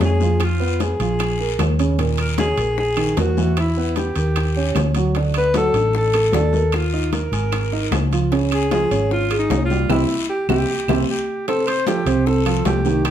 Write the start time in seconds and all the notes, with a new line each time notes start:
0.00 F2 C#4 C#5, high conga, high timbale, low timbale, short guiro
0.05 G#4
0.20 F3 F4, high bongo, high conga, short guiro
0.40 high bongo, high conga, high timbale, long guiro, claves
0.44 F4
0.60 B3 B4, high conga
0.80 G#4, high bongo, high conga, high timbale, low timbale, short guiro
1.00 A#1 F3 F4, high bongo, high conga, high timbale, short guiro
1.19 high bongo, high conga, high timbale, long guiro, claves
1.40 A#3 A#4, high bongo, high conga
1.59 D#2, high bongo, low bongo, high conga, high timbale, low timbale, short guiro, claves
1.79 C#3 C#4, high bongo, high conga, high timbale, short guiro
1.98 A#2 A#3, high bongo, high conga, high timbale, long guiro
2.18 A#4, high bongo, high conga, high timbale, claves
2.38 C#3 C#4 G#4, high bongo, high conga, high timbale, low timbale, short guiro
2.58 A#1 A#3 A#4, high conga, high timbale, short guiro
2.78 G#4, high bongo, high conga, long guiro
2.97 D#3 D#4, high bongo, high conga, high timbale, claves
3.17 E2 A#3 F#4 A#4, high bongo, low bongo, high conga, high timbale, low timbale, short guiro
3.37 E3 E4, high bongo, high conga, short guiro
3.57 E4, high bongo, high conga, high timbale, long guiro, claves
3.77 B3 B4, high conga
3.96 G4, high bongo, high conga, high timbale, low timbale, short guiro
4.16 D#2 A#3 A#4, high bongo, high conga, high timbale, short guiro
4.36 high bongo, high conga, high timbale, long guiro, claves
4.56 C#4 C#5, high bongo, high conga
4.75 D2, high bongo, low bongo, high conga, high timbale, low timbale, short guiro, claves
4.95 F#3 F#4, high bongo, high conga, high timbale, short guiro
5.15 D3 D4, high bongo, high conga, high timbale, long guiro
5.34 B4, high bongo, high conga, high timbale, claves
5.54 F#3 F#4 A4, high bongo, high conga, high timbale, low timbale, short guiro
5.74 A1 D4 D5, high conga, high timbale, short guiro
5.93 A4, high bongo, high conga, long guiro
6.14 A3 A4, high bongo, high conga, high timbale, claves
6.32 D#2 D4 A4 D5, high bongo, low bongo, high conga, high timbale, low timbale, short guiro
6.53 A#3 A#4, high bongo, high conga, short guiro
6.72 F4, high bongo, high conga, high timbale, long guiro, claves
6.93 D#4 D#5, high conga
7.13 A#4, high bongo, high conga, high timbale, low timbale, short guiro
7.32 G#1 G#3 G#4, high bongo, high conga, high timbale, short guiro
7.52 high bongo, high conga, high timbale, long guiro, claves
7.72 D#4 D#5, high bongo, high conga
7.91 C#2, high bongo, low bongo, high conga, high timbale, low timbale, short guiro, claves
8.11 F3 F4, high bongo, high conga, high timbale, short guiro
8.31 C#3 C#4, high bongo, high conga, high timbale, long guiro
8.51 G#4, high bongo, high conga, high timbale, claves
8.71 F3 F4 G#4, high bongo, high conga, high timbale, low timbale, short guiro
8.91 G#1 C#4 C#5, high conga, high timbale, short guiro
9.11 F4, high bongo, high conga, long guiro
9.30 G#3 G#4, high bongo, high conga, high timbale, claves
9.39 D#4
9.50 C2 C#4 C#5, high bongo, low bongo, high conga, high timbale, low timbale, short guiro
9.65 F4
9.70 G3 G4, high bongo, high conga, short guiro
9.89 C2 C4 E4 G4, low bongo, high conga, high timbale, long guiro, claves
10.29 G4
10.49 C2 C4 E4 G4, low bongo, high conga, high timbale, long guiro, claves
10.88 C2 C4 E4 G4, low bongo, high conga, high timbale, long guiro, claves
11.09 G4
11.48 C3 C4 A4 C5, high bongo, high conga, high timbale, long guiro
11.67 C5, high bongo, high conga, high timbale, claves
11.86 F3 F4 G4 A4, high bongo, high conga, high timbale, low timbale, short guiro
12.06 C2 C3 C4 C5, high conga, high timbale, short guiro
12.26 A4, high bongo, high conga, long guiro
12.45 F3 F4 A4, high bongo, high conga, high timbale, claves
12.65 C2 G4, high bongo, low bongo, high conga, high timbale, low timbale, short guiro
12.85 D#3 D#4 G4, high bongo, high conga, short guiro
13.05 G4, high bongo, high conga, high timbale, long guiro, claves